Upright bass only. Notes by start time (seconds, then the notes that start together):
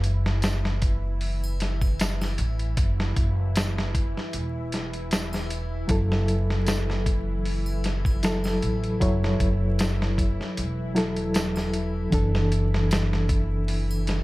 Already playing: F#1
2.39 A1
2.78 F#1
3.17 F#1
4.34 E1
5.89 F#1
8.63 A1
9.02 F#1
9.40 F#1
10.58 E1
12.13 F#1